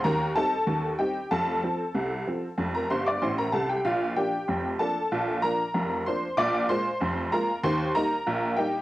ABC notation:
X:1
M:2/4
L:1/16
Q:1/4=95
K:Fmix
V:1 name="Honky-tonk piano"
[Bb]2 [Aa]4 [Gg]2 | [Aa]8- | [Aa] [Bb] [cc'] [dd'] [cc'] [Bb] [Aa] [Gg] | [Ff]2 [Gg]4 [Aa]2- |
[Aa]2 [Bb]4 [cc']2 | [dd']2 [cc']4 [Bb]2 | [cc']2 [Bb]4 [Gg]2 |]
V:2 name="Honky-tonk piano" clef=bass
[E,,E,]2 [G,CE]2 [E,,E,]2 [G,CE]2 | [F,,,F,,]2 [F,C]2 [C,,C,]2 [F,C]2 | [F,,,F,,]2 [G,,,G,,]2 [A,,,A,,]2 [C,,C,]2 | [B,,,B,,]2 [F,B,D]2 [F,,,F,,]2 [F,B,D]2 |
[B,,,B,,]2 [F,B,D]2 [F,,,F,,]2 [F,B,D]2 | [B,,,B,,]2 [_A,B,F]2 [F,,,F,,]2 [A,B,F]2 | [E,,E,]2 [G,B,E]2 [B,,,B,,]2 [G,B,E]2 |]